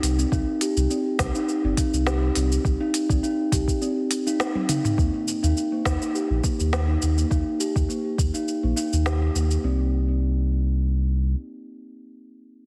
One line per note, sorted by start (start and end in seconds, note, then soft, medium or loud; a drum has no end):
0.00 0.25 C2 medium
0.00 0.17 D#4 loud
0.00 open hi-hat medium
0.00 cabasa medium
0.18 0.31 C4 medium
0.18 cabasa soft
0.32 0.44 C2 medium
0.32 0.47 D#4 loud
0.32 kick loud
0.32 cabasa soft
0.61 0.76 G4 medium
0.61 open hi-hat medium
0.61 cabasa medium
0.77 0.87 C2 loud
0.77 cabasa soft
0.90 1.05 C4 medium
0.90 cabasa soft
1.19 1.31 C2 medium
1.19 kick loud
1.19 snare medium
1.19 open hi-hat medium
1.19 cabasa medium
1.35 1.63 D#4 loud
1.35 cabasa soft
1.49 cabasa soft
1.64 1.74 G1 loud
1.64 1.76 C4 medium
1.77 1.93 D#4 loud
1.77 kick loud
1.77 open hi-hat medium
1.77 cabasa medium
1.93 2.30 C2 loud
1.93 cabasa soft
2.07 2.22 G4 medium
2.07 snare medium
2.07 cabasa soft
2.35 2.58 C2 medium
2.35 2.51 C4 medium
2.35 open hi-hat medium
2.35 cabasa medium
2.52 cabasa soft
2.65 2.77 C2 loud
2.65 kick loud
2.65 cabasa soft
2.81 3.08 D#4 loud
2.94 open hi-hat medium
2.94 cabasa medium
3.10 3.20 C2 loud
3.10 3.22 C4 medium
3.10 kick loud
3.10 cabasa soft
3.23 3.38 D#4 medium
3.23 cabasa soft
3.52 3.64 C2 medium
3.52 3.67 G4 medium
3.52 kick loud
3.52 open hi-hat loud
3.52 cabasa medium
3.68 kick medium
3.68 cabasa soft
3.81 3.96 C4 medium
3.81 cabasa soft
4.11 open hi-hat medium
4.11 cabasa medium
4.27 4.54 D#4 loud
4.27 cabasa soft
4.40 snare medium
4.40 cabasa soft
4.55 4.68 C4 medium
4.55 high tom medium
4.69 4.84 D#4 loud
4.69 open hi-hat loud
4.69 mid tom medium
4.69 cabasa medium
4.85 mid tom medium
4.85 cabasa soft
4.98 5.10 D#2 loud
4.98 5.13 A#3 medium
4.98 kick loud
4.98 cabasa soft
5.28 cabasa medium
5.43 5.53 D#2 medium
5.43 5.70 D#4 loud
5.43 cabasa soft
5.57 cabasa soft
5.72 5.84 A#3 medium
5.85 5.97 D#2 medium
5.85 kick loud
5.85 snare medium
5.85 cabasa medium
6.02 cabasa soft
6.15 6.29 G4 medium
6.15 cabasa soft
6.30 6.40 A#1 loud
6.44 6.59 A#3 medium
6.44 kick loud
6.44 cabasa medium
6.60 6.97 D#2 loud
6.60 cabasa soft
6.73 snare medium
6.73 cabasa soft
6.88 7.16 D#4 medium
7.02 7.24 D#2 medium
7.02 cabasa medium
7.17 7.29 A#3 medium
7.17 cabasa soft
7.31 7.43 D#2 loud
7.31 7.46 D#4 medium
7.31 kick loud
7.31 cabasa soft
7.60 7.75 G4 medium
7.60 cabasa medium
7.76 7.86 D#2 medium
7.76 kick loud
7.76 cabasa soft
7.89 8.04 A#3 medium
7.89 cabasa soft
8.18 8.30 D#2 medium
8.18 kick loud
8.18 cabasa medium
8.34 8.62 D#4 medium
8.34 cabasa soft
8.48 cabasa soft
8.63 8.73 A#1 loud
8.63 8.75 A#3 medium
8.76 8.91 D#4 medium
8.76 cabasa medium
8.93 9.30 D#2 loud
8.93 cabasa soft
9.06 9.21 G4 medium
9.06 snare medium
9.06 cabasa soft
9.35 9.57 D#2 medium
9.35 9.50 A#3 medium
9.35 cabasa medium
9.51 cabasa soft
9.64 11.34 C2 medium
9.64 9.91 C4 medium